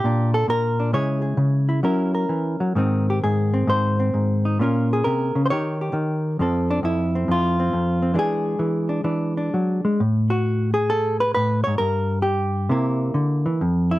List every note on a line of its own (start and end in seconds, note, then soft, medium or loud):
0.00 0.33 G4 medium
0.04 0.47 A#2 medium
0.04 0.78 D4 soft
0.34 0.48 A4 medium
0.48 0.92 A#2 medium
0.48 0.93 A#4 medium
0.80 0.92 D4 soft
0.93 1.36 C#3 soft
0.93 1.83 G#3 soft
0.93 1.68 E4 soft
0.93 1.22 G#4 soft
0.93 1.83 C#5 medium
1.22 1.84 G#4 soft
1.37 1.81 C#3 medium
1.69 1.81 E4 soft
1.83 2.29 F#3 medium
1.83 2.75 C#4 soft
1.83 2.75 E4 soft
1.83 2.13 A#4 soft
2.15 2.75 A#4 soft
2.29 2.60 E3 soft
2.60 2.76 F#3 soft
2.75 3.22 G#2 medium
2.75 4.59 D#3 soft
2.75 3.52 C4 soft
2.75 3.08 D#4 soft
3.10 3.18 G4 medium
3.24 3.66 G#2 medium
3.24 3.69 G#4 medium
3.54 3.98 C4 soft
3.67 4.13 G#2 medium
3.67 4.60 C5 medium
4.00 4.58 C4 soft
4.14 4.57 G#2 medium
4.45 4.58 D#4 soft
4.59 5.05 A#2 medium
4.59 5.49 A#3 soft
4.59 5.49 C#4 soft
4.59 4.93 F4 soft
4.59 5.03 A#4 soft
4.93 5.51 G#4 medium
5.04 5.35 C3 soft
5.04 5.45 A#4 medium
5.35 5.50 C#3 medium
5.46 5.50 C5 medium
5.50 5.92 D#3 medium
5.50 6.38 D#4 soft
5.50 5.80 G4 soft
5.50 6.40 C#5 medium
5.81 6.38 G4 soft
5.93 6.39 D#3 medium
6.39 6.82 F2 medium
6.39 8.13 F3 soft
6.39 7.14 C4 soft
6.39 7.29 A4 soft
6.71 6.79 D4 medium
6.83 7.27 F2 medium
6.83 7.72 E4 medium
7.15 7.58 C4 soft
7.28 7.72 F2 medium
7.28 8.17 F4 medium
7.60 8.01 C4 soft
7.73 8.16 F2 medium
8.02 8.14 C4 soft
8.14 8.58 E3 medium
8.14 9.83 G#3 soft
8.14 8.88 D4 soft
8.19 10.02 G#4 medium
8.59 9.03 E3 medium
8.89 9.03 D4 soft
9.04 9.52 E3 medium
9.04 9.36 D4 soft
9.37 9.99 D4 soft
9.54 9.84 F#3 soft
9.85 10.00 G#3 medium
10.00 11.35 A2 medium
10.30 10.73 F#4 medium
10.74 11.36 G#4 medium
10.90 11.20 A4 medium
11.20 11.33 B4 medium
11.35 11.67 A2 medium
11.35 11.63 B4 loud
11.64 11.79 G#2 medium
11.64 11.78 C#5 medium
11.78 12.70 G2 medium
11.78 12.22 A#4 medium
12.22 13.58 G4 medium
12.69 13.14 C3 medium
12.69 13.58 A#3 soft
12.69 13.64 E4 soft
13.14 13.45 D3 medium
13.46 13.61 E3 medium
13.61 13.99 F2 medium
13.91 13.99 E4 medium